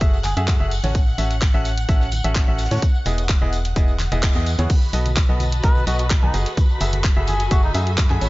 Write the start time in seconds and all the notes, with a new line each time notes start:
Already playing: F#5 F#6
0.01 F#1 A3 F#4 G#4 E5, kick, closed hi-hat, tambourine, shaker
0.14 tambourine
0.24 G#4, clap, open hi-hat, tambourine, high conga, shaker
0.37 F#2 A3 F#4 G#4 E5, closed hi-hat, tambourine
0.48 kick, snare, clap, closed hi-hat, tambourine, shaker
0.60 F#1 A3 F#4 G#4 E5
0.71 open hi-hat, tambourine
0.84 A1 C#4 F#4 A4 C#5, snare, closed hi-hat, tambourine, high conga
0.95 kick, closed hi-hat, tambourine, shaker
1.07 tambourine
1.18 A1 C#4 F#4 A4 E5, open hi-hat, tambourine, shaker
1.31 closed hi-hat, tambourine
1.41 kick, snare, clap, closed hi-hat, tambourine, shaker
1.54 A1 C#4 F#4 A4 E5, closed hi-hat
1.65 open hi-hat, tambourine, shaker
1.77 closed hi-hat, tambourine
1.89 A1 C#4 F#4 A4 E5, kick, closed hi-hat, tambourine, shaker
2.01 snare, tambourine
2.12 open hi-hat, tambourine, high conga, shaker
2.24 A1 C#4 F#4 A4 E5, closed hi-hat, tambourine
2.35 kick, snare, clap, closed hi-hat, tambourine, shaker
2.48 A1 C#4 F#4 A4 E5
2.58 snare, open hi-hat, tambourine, shaker
2.65 snare, shaker
2.71 A2 C#4 F#4 A4 C#5, snare, closed hi-hat, tambourine, high conga, shaker
2.76 snare, shaker
2.82 kick, closed hi-hat, tambourine, shaker
2.95 tambourine
3.05 E1 B3 E4 G#4 D#5, open hi-hat, tambourine, shaker
3.18 closed hi-hat, tambourine
3.29 kick, snare, clap, closed hi-hat, tambourine, shaker
3.42 E1 B3 E4 G#4 D#5
3.53 open hi-hat, tambourine, shaker
3.65 snare, closed hi-hat, tambourine
3.76 E1 B3 E4 G#4 D#5, kick, closed hi-hat, tambourine, shaker
3.88 tambourine
3.99 clap, open hi-hat, tambourine, high conga, shaker
4.12 E1 B3 E4 G#4 D#5, closed hi-hat, tambourine
4.23 kick, snare, clap, closed hi-hat, tambourine, shaker
4.35 E2 B3 E4 G#4 D#5, closed hi-hat, tambourine
4.46 open hi-hat, tambourine, shaker
4.59 E2 B3 E4 G#4 C#5, snare, closed hi-hat, tambourine, high conga
4.70 F#4 B5 B6, kick, closed hi-hat, tambourine, crash, high conga, shaker
4.82 tambourine
4.93 B1 B3 F#4 A4 D#5, open hi-hat, tambourine, shaker
5.05 B4, closed hi-hat, tambourine, high conga
5.16 kick, snare, clap, closed hi-hat, tambourine, shaker
5.26 B1 B3 F#4 A4 D#5 A5, closed hi-hat
5.40 open hi-hat, tambourine, high conga, shaker
5.52 closed hi-hat, tambourine
5.63 B1 B3 F#4 A4 B4 D#5, kick, closed hi-hat, tambourine, shaker
5.75 snare, tambourine, high conga
5.87 B1 B3 F#4 A4 D#5, open hi-hat, tambourine, shaker
5.99 F#4, closed hi-hat, tambourine
6.10 kick, snare, clap, closed hi-hat, tambourine, shaker
6.22 B1 B3 D#4 F#4 A4 G#5, high conga
6.34 F#1 A3 F#4 G#4 D#5, open hi-hat, tambourine, shaker
6.44 A4, snare, closed hi-hat, tambourine
6.57 kick, closed hi-hat, tambourine, high conga, shaker
6.69 tambourine
6.80 F#1 A3 F#4 G#4 E5, open hi-hat, tambourine, shaker
6.92 closed hi-hat, tambourine, high conga
7.04 kick, snare, clap, closed hi-hat, tambourine, shaker
7.16 F#1 A3 F#4 G#4 E5 G#5
7.27 G#4, open hi-hat, tambourine, high conga, shaker
7.40 snare, closed hi-hat, tambourine
7.51 F#1 A3 F#4 G#4 E5, kick, closed hi-hat, tambourine, shaker
7.63 D#4, tambourine, high conga
7.74 F#2 A3 D#4 F#4 G#4 E5, open hi-hat, tambourine, shaker
7.87 closed hi-hat, tambourine
7.98 kick, snare, clap, closed hi-hat, tambourine, shaker
8.10 F#2 A3 F#4 G#4 G#5, clap, high conga
8.21 A1 C#4 F#4 A4 C#5, open hi-hat, tambourine